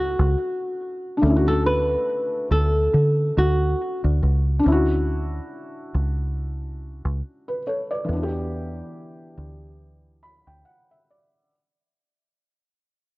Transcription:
0.00 0.15 C#2 loud
0.00 1.18 C#4 medium
0.00 1.16 D4 medium
0.00 1.21 E4 medium
0.00 1.19 F#4 medium
0.00 1.23 F#4 medium
0.19 0.35 C#2 medium
1.17 4.58 D4 medium
1.21 1.96 D2 loud
1.21 4.61 A3 medium
1.25 4.62 C#4 medium
1.30 1.34 E4 medium
1.37 4.68 F#4 medium
1.48 1.64 A4 medium
1.66 2.48 B4 medium
2.51 2.88 D2 medium
2.51 3.33 A4 medium
2.94 3.30 D3 loud
3.37 3.73 D2 medium
3.37 4.01 F#4 medium
4.04 4.20 D2 medium
4.23 4.59 C#2 medium
4.59 7.58 D4 medium
4.64 5.39 D2 loud
4.64 7.61 C#4 medium
4.68 7.63 E4 medium
4.72 7.65 F#4 medium
5.94 7.00 C#2 medium
7.05 7.20 C#2 medium
7.48 7.65 B4 medium
7.67 7.90 A4 medium
7.67 7.89 C#5 medium
7.91 8.31 B4 soft
7.91 8.31 D5 medium
8.05 11.45 E3 medium
8.09 8.81 E2 loud
8.09 11.47 B3 medium
8.13 11.49 D4 medium
8.13 8.20 F#4 medium
8.23 11.55 G4 medium
9.37 10.43 D2 medium
10.23 10.46 B5 medium
10.47 10.63 D2 medium
10.47 10.64 G5 medium
10.65 10.88 F#5 medium
10.91 11.08 E5 medium
11.10 11.49 D5 medium

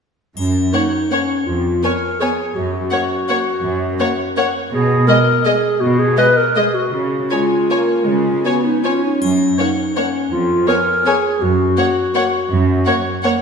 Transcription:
0.36 0.67 F#2 soft
0.36 0.70 C#4 soft
0.36 triangle soft
0.72 0.81 A#3 soft
0.72 1.13 D#4 soft
0.72 0.81 C#5 soft
0.72 0.82 F#5 soft
1.11 1.20 A#3 soft
1.11 1.48 C#4 soft
1.11 1.20 C#5 soft
1.11 1.19 F#5 soft
1.46 1.77 F2 soft
1.46 1.86 F4 soft
1.83 1.92 B3 soft
1.83 2.21 A#4 medium
1.83 1.92 C#5 soft
1.83 1.91 G#5 soft
2.20 2.30 B3 soft
2.20 2.57 G#4 soft
2.20 2.29 C#5 soft
2.20 2.29 G#5 soft
2.55 2.85 F#2 soft
2.55 4.55 F#4 medium
2.91 3.01 A#3 soft
2.91 3.00 C#5 soft
2.91 2.99 F#5 soft
3.28 3.38 A#3 soft
3.28 3.37 C#5 soft
3.28 3.36 F#5 soft
3.64 3.93 F#2 soft
4.00 4.08 A#3 soft
4.00 4.08 C#5 soft
4.00 4.08 F#5 soft
4.37 4.45 A#3 soft
4.37 4.45 C#5 soft
4.37 4.45 F#5 soft
4.72 5.02 B2 medium
4.72 5.05 G#4 medium
5.07 5.16 G#3 soft
5.07 5.47 A#4 medium
5.07 5.16 D#5 soft
5.07 5.17 D#5 soft
5.45 5.54 G#3 soft
5.45 5.82 G#4 medium
5.45 5.53 D#5 soft
5.45 5.54 D#5 soft
5.80 6.11 B2 medium
5.80 6.01 F#4 medium
5.99 6.17 G#4 medium
6.17 6.25 G#3 soft
6.17 6.39 B4 medium
6.17 6.26 D#5 soft
6.37 6.58 A#4 medium
6.56 6.64 G#3 soft
6.56 6.76 G#4 medium
6.56 6.64 D#5 soft
6.74 6.93 F#4 soft
6.93 7.24 C#3 soft
6.93 7.33 F#4 soft
7.31 7.67 G#3 soft
7.31 8.46 F4 soft
7.31 7.39 C#5 soft
7.31 7.39 G#5 soft
7.70 8.07 A#3 soft
7.70 7.78 C#5 soft
7.70 7.78 G#5 soft
8.07 8.38 C#3 soft
8.07 8.45 G#3 soft
8.44 8.84 B3 soft
8.44 8.66 F#4 soft
8.44 8.54 C#5 soft
8.44 8.53 G#5 soft
8.64 8.85 D#4 soft
8.83 9.21 C#4 soft
8.83 9.05 F4 soft
8.83 8.92 C#5 soft
8.83 8.92 G#5 soft
9.03 9.20 D#4 soft
9.21 9.52 F#2 soft
9.21 9.61 C#4 soft
9.21 triangle soft
9.58 9.67 A#3 soft
9.58 9.96 D#4 soft
9.58 9.66 C#5 soft
9.58 9.68 F#5 soft
9.96 10.05 A#3 soft
9.96 10.34 C#4 soft
9.96 10.04 C#5 soft
9.96 10.05 F#5 soft
10.31 10.61 F2 soft
10.31 10.69 F4 medium
10.67 10.76 B3 soft
10.67 11.09 A#4 medium
10.67 10.75 C#5 soft
10.67 10.77 G#5 soft
11.06 11.14 B3 soft
11.06 11.43 G#4 medium
11.06 11.14 C#5 soft
11.06 11.14 G#5 soft
11.41 11.72 F#2 soft
11.41 13.42 F#4 medium
11.77 11.85 A#3 soft
11.77 11.85 C#5 soft
11.77 11.86 F#5 soft
12.15 12.23 A#3 soft
12.15 12.23 C#5 soft
12.15 12.24 F#5 soft
12.50 12.80 F#2 medium
12.86 12.95 A#3 soft
12.86 12.95 C#5 soft
12.86 12.94 F#5 soft
13.23 13.32 A#3 soft
13.23 13.32 C#5 soft
13.23 13.31 F#5 soft

